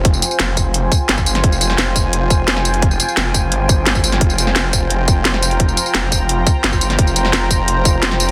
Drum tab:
HH |x-x-x-x-x-x-x-xx|x-x-x-x-x-x-x-xx|x-x-x-x-x-x-x-xx|x-x-x-x-x-x-x-xx|
TB |-xxx--x---x--xx-|-xx---x---x---x-|-xxx--x---x--xx-|-xx---x---x---x-|
SD |----o-------o--o|---oo-------oo--|----o-------o--o|---oo-------oo--|
BD |o-----o---o--o--|o-----o---o-----|o-----o---o--o--|o-----o---o-----|

HH |x-x-x-x-x-x-x-xx|x-x-x-x-x-x-x-x-|
TB |-xxx--x---x--xx-|-xx---x---x---x-|
SD |----o-------o--o|---oo-------oo--|
BD |o-----o---o--o--|o-----o---o-----|